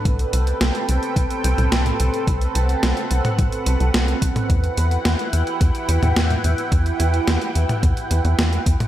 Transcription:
Already playing: B4
0.05 C2 C4 A4 G5, kick, closed hi-hat
0.19 closed hi-hat
0.33 C2, closed hi-hat
0.47 closed hi-hat
0.61 C2, snare, closed hi-hat
0.75 closed hi-hat
0.89 C2, closed hi-hat
1.03 closed hi-hat
1.16 C2, kick, closed hi-hat
1.30 closed hi-hat
1.44 C2, closed hi-hat
1.58 C2, closed hi-hat, mid tom
1.72 C2, snare, closed hi-hat
1.86 closed hi-hat, mid tom
2.00 C2, closed hi-hat
2.14 closed hi-hat
2.27 C2 F#5, kick, closed hi-hat
2.41 closed hi-hat
2.55 C2, closed hi-hat
2.69 closed hi-hat
2.83 C2, snare, closed hi-hat
2.97 closed hi-hat
3.11 C2, closed hi-hat
3.25 closed hi-hat, mid tom
3.39 C2, kick, closed hi-hat
3.52 closed hi-hat
3.66 C2, closed hi-hat
3.80 C2, closed hi-hat
3.94 C2, snare, closed hi-hat
4.08 closed hi-hat
4.22 C2, kick, closed hi-hat
4.36 closed hi-hat, mid tom
4.50 E2 E4 G5, kick, closed hi-hat
4.64 closed hi-hat
4.77 E2, closed hi-hat
4.91 closed hi-hat
5.05 E2, snare, closed hi-hat
5.19 closed hi-hat
5.33 E2, closed hi-hat
5.47 closed hi-hat
5.61 E2, kick, closed hi-hat
5.75 closed hi-hat
5.89 E2, closed hi-hat
6.02 E2, closed hi-hat, mid tom
6.16 E2, snare, closed hi-hat
6.30 closed hi-hat, mid tom
6.44 E2, closed hi-hat
6.58 closed hi-hat
6.72 E2, kick, closed hi-hat
6.86 closed hi-hat
7.00 E2, closed hi-hat
7.14 closed hi-hat
7.28 E2, snare, closed hi-hat
7.42 closed hi-hat
7.55 E2, closed hi-hat
7.69 closed hi-hat, mid tom
7.83 E2, kick, closed hi-hat
7.97 closed hi-hat
8.11 E2, closed hi-hat
8.25 E2, closed hi-hat
8.39 E2, snare, closed hi-hat
8.53 closed hi-hat
8.66 E2, kick, closed hi-hat
8.80 closed hi-hat, mid tom

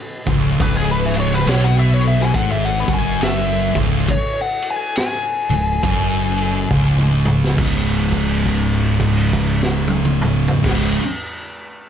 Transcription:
0.27 C#1 C#2, kick, ride
0.60 C#1 C#2 B4, kick, ride
0.77 G#4
0.92 B4
1.06 E5
1.14 ride
1.20 C#5
1.32 B4, snare
1.46 B1 B2 C#5, snare, ride
1.64 F#5
1.79 E5
1.94 C#5
2.01 ride
2.08 E5
2.19 G#5, snare
2.34 G#1 G#2 F#5, kick, ride
2.51 E5
2.66 F#5
2.80 B5
2.88 F#1 F#2, kick, ride
2.94 G#5
3.21 E5, snare, ride
3.75 C#1 C#2, kick, ride
4.08 C#5, kick, ride
4.41 F#5
4.62 ride
4.71 G#5
4.96 G#5, snare, ride
5.50 C#1 C#2, ride
5.83 F#1 F#2, kick, ride
6.38 ride
6.70 C#1 C#2, kick
6.98 mid tom
7.25 mid tom
7.44 snare
7.57 C#1 C#2 G#2, kick, crash
7.61 C#3
8.12 kick, crash
8.29 crash
8.46 kick, crash
8.73 crash
9.00 kick, crash
9.17 crash
9.33 kick, crash
9.63 snare
9.88 high tom
10.05 mid tom
10.21 mid tom
10.48 floor tom
10.63 C#1 C#2 G#2 C#3, kick, snare, crash

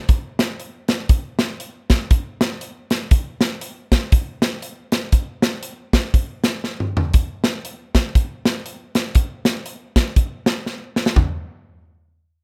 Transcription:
0.09 kick, closed hi-hat
0.39 snare, closed hi-hat
0.60 closed hi-hat
0.88 snare, closed hi-hat
1.09 kick, closed hi-hat
1.39 snare, closed hi-hat
1.60 closed hi-hat
1.90 kick, snare, closed hi-hat
2.11 kick, closed hi-hat
2.41 snare, closed hi-hat
2.61 closed hi-hat
2.90 snare, closed hi-hat
3.11 kick, closed hi-hat
3.41 snare, closed hi-hat
3.61 closed hi-hat
3.92 kick, snare, closed hi-hat
4.12 kick, closed hi-hat
4.42 snare, closed hi-hat
4.62 closed hi-hat
4.92 snare, closed hi-hat
5.12 kick, closed hi-hat
5.42 snare, closed hi-hat
5.63 closed hi-hat
5.93 kick, snare, closed hi-hat
6.14 kick, closed hi-hat
6.44 snare, closed hi-hat
6.64 snare
6.80 mid tom
6.97 floor tom
7.14 kick, closed hi-hat
7.44 snare, closed hi-hat
7.65 closed hi-hat
7.95 kick, snare, closed hi-hat
8.15 kick, closed hi-hat
8.45 snare, closed hi-hat
8.66 closed hi-hat
8.95 snare, closed hi-hat
9.15 kick, closed hi-hat
9.45 snare, closed hi-hat
9.66 closed hi-hat
9.96 kick, snare, closed hi-hat
10.16 kick, closed hi-hat
10.46 snare, closed hi-hat
10.66 snare
10.96 snare
11.06 snare
11.16 kick, floor tom

